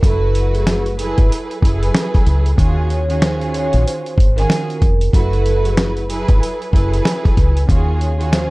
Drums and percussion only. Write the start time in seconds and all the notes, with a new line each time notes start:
0.03 kick, closed hi-hat
0.35 closed hi-hat
0.55 closed hi-hat
0.67 snare, closed hi-hat
0.86 closed hi-hat
0.99 closed hi-hat
1.18 kick, closed hi-hat
1.32 closed hi-hat
1.51 closed hi-hat
1.62 kick, closed hi-hat
1.83 closed hi-hat
1.95 snare, closed hi-hat
2.14 kick, snare, closed hi-hat
2.27 closed hi-hat
2.46 closed hi-hat
2.58 kick, closed hi-hat
2.90 closed hi-hat
3.10 closed hi-hat
3.22 snare, closed hi-hat
3.41 closed hi-hat
3.54 closed hi-hat
3.73 closed hi-hat
3.88 closed hi-hat
4.06 closed hi-hat
4.18 kick, closed hi-hat
4.38 closed hi-hat
4.50 snare, closed hi-hat
4.70 closed hi-hat
4.82 kick, closed hi-hat
5.01 closed hi-hat
5.13 kick, closed hi-hat
5.33 closed hi-hat
5.46 closed hi-hat
5.65 closed hi-hat
5.77 snare, closed hi-hat
5.97 closed hi-hat
6.10 closed hi-hat
6.28 kick, closed hi-hat
6.43 closed hi-hat
6.62 closed hi-hat
6.73 kick, closed hi-hat
6.93 closed hi-hat
7.05 snare, closed hi-hat
7.25 kick, snare, closed hi-hat
7.37 kick, closed hi-hat
7.57 closed hi-hat
7.69 kick, closed hi-hat
8.01 closed hi-hat
8.21 closed hi-hat
8.33 snare, closed hi-hat